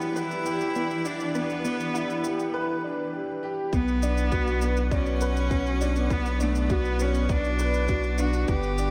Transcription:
Already playing: ambient pad E3 E4 G4 D5, cello B3, grand piano B3 D4 E4 G4
0.01 shaker
0.16 cello E4, grand piano B4, synth arpeggio sound F#5, shaker
0.31 shaker
0.46 grand piano G4, synth arpeggio sound B4, shaker
0.61 shaker
0.75 synth arpeggio sound B3, grand piano E4, shaker
0.91 shaker
1.05 grand piano D4, cello D4, synth arpeggio sound F#5, shaker
1.20 shaker
1.35 grand piano B3, cello B3, synth arpeggio sound B4, shaker
1.50 shaker
1.65 synth arpeggio sound B3, grand piano D4, shaker
1.80 shaker
1.94 grand piano E4, synth arpeggio sound F#5, shaker
2.10 shaker
2.24 grand piano G4, synth arpeggio sound B4, shaker
2.40 shaker
2.54 grand piano B4
2.84 grand piano D4
3.13 grand piano G4
3.43 grand piano G4
3.73 analog synth bass B1, grand piano B3, ambient pad B3 B4 F#5, cello B3, kick, shaker
3.88 shaker
4.03 grand piano D4, shaker
4.18 shaker
4.32 grand piano F#4, kick, shaker
4.47 shaker
4.62 grand piano B4, shaker
4.77 shaker
4.91 cello C#4, grand piano D5, kick, shaker
5.06 shaker
5.21 grand piano B4, shaker
5.37 shaker
5.51 grand piano F#4, kick, shaker
5.67 shaker
5.81 grand piano D4, shaker
5.96 shaker
6.10 grand piano B3, cello B3, kick, shaker
6.25 shaker
6.40 cello A3, grand piano D4, shaker
6.55 shaker
6.70 cello B3, grand piano F#4, kick, shaker
6.85 shaker
7.00 cello C#4, grand piano B4, shaker
7.15 shaker
7.29 cello D4, grand piano D5, kick, shaker
7.44 shaker
7.59 grand piano B4, shaker
7.74 shaker
7.88 grand piano F#4, kick, shaker
8.03 shaker
8.18 grand piano D4, cello F#4, shaker
8.33 shaker
8.48 analog synth bass G1, ambient pad G3 D4, grand piano B3, cello G4, kick, shaker
8.63 shaker
8.78 grand piano D4, shaker

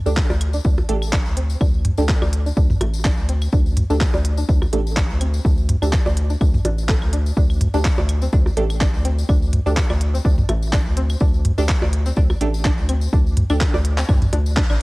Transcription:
0.06 analog synth bass D2, synth pluck D4, synth stab D4 G4 A4, tambourine
0.17 kick, clap
0.30 analog synth bass D2, synth pluck D5, tambourine, percussion blips
0.41 closed hi-hat, claves
0.53 synth pluck D4, tambourine
0.64 analog synth bass D2, synth pluck D4, kick, tambourine
0.78 tambourine, percussion blips
0.89 analog synth bass A1, synth pluck A3, synth stab D4 G4 A4, closed hi-hat
1.02 tambourine, claves
1.13 synth pluck D4, kick, clap
1.25 analog synth bass D2, tambourine
1.37 synth pluck C4, closed hi-hat
1.50 tambourine
1.61 analog synth bass D2, synth pluck D4, kick, tambourine, claves
1.74 tambourine
1.85 closed hi-hat, mid tom
1.98 analog synth bass D2, synth pluck D4, synth stab D4 G4 A4, tambourine
2.09 kick, clap, tambourine
2.22 analog synth bass D2, synth pluck D5, tambourine, percussion blips, claves
2.33 closed hi-hat
2.46 synth pluck D4, tambourine
2.57 analog synth bass D2, synth pluck D4, kick, tambourine
2.70 mid tom, tambourine
2.81 analog synth bass A1, synth pluck A3, closed hi-hat, percussion blips, claves
2.94 tambourine
3.05 synth pluck D4, kick, clap, tambourine
3.17 analog synth bass D2, tambourine
3.29 synth pluck C4, closed hi-hat
3.42 tambourine, claves
3.52 analog synth bass D2, synth pluck D4, kick, tambourine
3.66 tambourine
3.77 closed hi-hat, mid tom
3.90 analog synth bass D2, synth pluck D4, synth stab D4 G4 A4, tambourine
4.01 kick, clap, tambourine, claves
4.14 analog synth bass D2, synth pluck D5, tambourine, percussion blips
4.25 closed hi-hat
4.37 synth pluck D4, tambourine
4.49 analog synth bass D2, synth pluck D4, kick, tambourine
4.62 tambourine, percussion blips, claves
4.73 analog synth bass A1, synth pluck A3, synth stab D4 G4 A4, closed hi-hat
4.87 tambourine
4.97 synth pluck D4, kick, clap, tambourine
5.10 analog synth bass D2, tambourine
5.21 synth pluck C4, closed hi-hat, claves
5.34 tambourine
5.45 analog synth bass D2, synth pluck D4, kick, tambourine
5.58 tambourine
5.69 closed hi-hat, mid tom
5.82 analog synth bass D2, synth pluck D4, synth stab D4 G4 A4, tambourine, claves
5.92 kick, clap, tambourine
6.06 analog synth bass D2, synth pluck D5, tambourine, percussion blips
6.17 closed hi-hat
6.30 synth pluck D4, tambourine
6.41 analog synth bass D2, synth pluck D4, kick, tambourine, claves
6.54 mid tom, tambourine
6.65 analog synth bass A1, synth pluck D4, closed hi-hat, percussion blips
6.78 tambourine
6.89 synth pluck A4, kick, clap, tambourine
7.02 analog synth bass D2, tambourine, claves
7.13 synth pluck D4, closed hi-hat
7.26 tambourine
7.37 analog synth bass D2, synth pluck D4, kick, tambourine
7.50 tambourine, claves
7.61 closed hi-hat, mid tom
7.74 analog synth bass D2, synth stab D4 G4 A4, synth pluck D4, tambourine
7.85 kick, clap, tambourine
7.98 analog synth bass D2, synth pluck D5, tambourine, percussion blips
8.09 closed hi-hat, claves
8.22 synth pluck C4, tambourine
8.33 analog synth bass D2, synth pluck D4, kick, tambourine
8.46 tambourine, percussion blips
8.57 analog synth bass A1, synth pluck A3, synth stab D4 G4 A4, closed hi-hat
8.70 tambourine, claves
8.80 synth pluck D4, kick, clap, tambourine
8.94 analog synth bass D2, tambourine
9.05 synth pluck C4, closed hi-hat
9.18 tambourine
9.29 analog synth bass D2, synth pluck D4, kick, tambourine, claves
9.42 tambourine
9.53 closed hi-hat, mid tom
9.66 analog synth bass D2, synth stab D4 G4 A4, synth pluck D4, tambourine
9.77 kick, clap, tambourine
9.90 analog synth bass D2, synth pluck D5, tambourine, percussion blips, claves
10.01 closed hi-hat
10.14 synth pluck C4, tambourine
10.25 analog synth bass D2, synth pluck D4, kick, tambourine
10.38 mid tom, tambourine
10.49 analog synth bass A1, synth pluck A3, closed hi-hat, percussion blips, claves
10.62 tambourine
10.73 synth pluck D4, kick, clap, tambourine
10.86 analog synth bass D2, tambourine
10.97 synth pluck C4, closed hi-hat
11.10 tambourine, claves
11.20 analog synth bass D2, synth pluck D4, kick, tambourine
11.34 tambourine
11.45 closed hi-hat, mid tom
11.58 analog synth bass D2, synth pluck D4, synth stab D4 G4 A4, tambourine
11.68 kick, clap, tambourine, claves
11.82 analog synth bass D2, synth pluck D5, tambourine, percussion blips
11.93 closed hi-hat
12.06 synth pluck C4, tambourine
12.16 analog synth bass D2, synth pluck D4, kick, tambourine
12.30 tambourine, percussion blips, claves
12.41 analog synth bass A1, synth pluck A3, synth stab D4 G4 A4, closed hi-hat
12.54 tambourine
12.64 synth pluck D4, kick, clap, tambourine
12.78 analog synth bass D2, tambourine
12.89 synth pluck C4, closed hi-hat, claves
13.01 tambourine
13.13 analog synth bass D2, synth pluck D4, kick, tambourine
13.26 tambourine
13.37 closed hi-hat, mid tom
13.50 analog synth bass D2, synth pluck D4, synth stab D4 G4 A4, tambourine, claves
13.60 kick, clap, closed hi-hat, tambourine
13.74 analog synth bass D2, synth pluck D5, tambourine, percussion blips
13.85 closed hi-hat
13.98 synth pluck C4, clap, tambourine
14.09 analog synth bass D2, synth pluck D4, kick, mid tom, tambourine, claves
14.22 closed hi-hat, mid tom, tambourine
14.33 analog synth bass D2, synth pluck D4, closed hi-hat, percussion blips
14.46 tambourine
14.57 synth pluck D4, kick, clap, tambourine
14.70 analog synth bass A1, synth pluck D4, tambourine, claves

